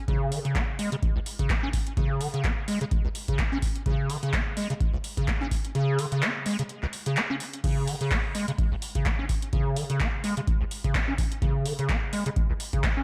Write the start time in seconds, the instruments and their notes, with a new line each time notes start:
0.08 acid bass C#3, kick, closed hi-hat
0.32 acid bass D#3, open hi-hat
0.45 acid bass C#3, closed hi-hat
0.55 acid bass C#4, kick, clap, closed hi-hat
0.79 acid bass G#3, open hi-hat
0.92 acid bass C#3, closed hi-hat
1.03 kick, closed hi-hat
1.16 acid bass C#2
1.26 open hi-hat
1.39 acid bass C#3, kick, closed hi-hat
1.50 acid bass E4, kick, clap, closed hi-hat
1.63 acid bass C#4
1.73 kick, open hi-hat
1.87 closed hi-hat
1.97 acid bass C#3, kick, closed hi-hat
2.21 acid bass D#3, open hi-hat
2.34 acid bass C#3, closed hi-hat
2.44 acid bass C#4, kick, clap, closed hi-hat
2.68 acid bass G#3, open hi-hat
2.81 acid bass C#3, closed hi-hat
2.91 kick, closed hi-hat
3.05 acid bass C#2
3.15 open hi-hat
3.28 acid bass C#3, kick, closed hi-hat
3.39 acid bass E4, kick, clap, closed hi-hat
3.52 acid bass C#4
3.62 kick, open hi-hat
3.76 closed hi-hat
3.86 acid bass C#3, kick, closed hi-hat
4.10 acid bass D#3, open hi-hat
4.23 acid bass C#3, closed hi-hat
4.33 acid bass C#4, kick, clap, closed hi-hat
4.57 acid bass G#3, open hi-hat
4.70 acid bass C#3, closed hi-hat
4.80 kick, closed hi-hat
4.94 acid bass C#2
5.04 open hi-hat
5.17 acid bass C#3, kick, closed hi-hat
5.28 acid bass E4, kick, clap, closed hi-hat
5.41 acid bass C#4
5.51 kick, open hi-hat
5.65 closed hi-hat
5.75 acid bass C#3, closed hi-hat
5.99 acid bass D#3, open hi-hat
6.12 acid bass C#3, closed hi-hat
6.22 acid bass C#4, clap, closed hi-hat
6.46 acid bass G#3, open hi-hat
6.59 acid bass C#3, closed hi-hat
6.69 closed hi-hat
6.83 acid bass C#2, clap
6.93 open hi-hat
7.06 acid bass C#3, closed hi-hat
7.17 acid bass E4, clap, closed hi-hat
7.30 acid bass C#4
7.40 open hi-hat
7.53 closed hi-hat
7.64 acid bass C#3, kick, closed hi-hat, crash
7.87 acid bass D#3, open hi-hat
8.01 acid bass C#3, closed hi-hat
8.11 acid bass C#4, kick, clap, closed hi-hat
8.35 acid bass G#3, open hi-hat
8.48 acid bass C#3, closed hi-hat
8.58 kick, closed hi-hat
8.72 acid bass C#2
8.82 open hi-hat
8.95 acid bass C#3, kick, closed hi-hat
9.06 acid bass E4, kick, clap, closed hi-hat
9.19 acid bass C#4
9.29 kick, open hi-hat
9.42 closed hi-hat
9.53 acid bass C#3, kick, closed hi-hat
9.76 acid bass D#3, open hi-hat
9.90 acid bass C#3, closed hi-hat
10.00 acid bass C#4, kick, clap, closed hi-hat
10.24 acid bass G#3, open hi-hat
10.37 acid bass C#3, closed hi-hat
10.47 kick, closed hi-hat
10.61 acid bass C#2
10.71 open hi-hat
10.84 acid bass C#3, kick, closed hi-hat
10.95 acid bass E4, kick, clap, closed hi-hat
11.08 acid bass C#4
11.18 kick, open hi-hat
11.32 closed hi-hat
11.42 acid bass C#3, kick, closed hi-hat
11.65 acid bass D#3, open hi-hat
11.79 acid bass C#3, closed hi-hat
11.89 acid bass C#4, kick, clap, closed hi-hat
12.13 acid bass G#3, open hi-hat
12.26 acid bass C#3, closed hi-hat
12.36 kick, closed hi-hat
12.50 acid bass C#2
12.60 open hi-hat
12.73 acid bass C#3, kick, closed hi-hat
12.84 acid bass E4, kick, clap, closed hi-hat
12.97 acid bass C#4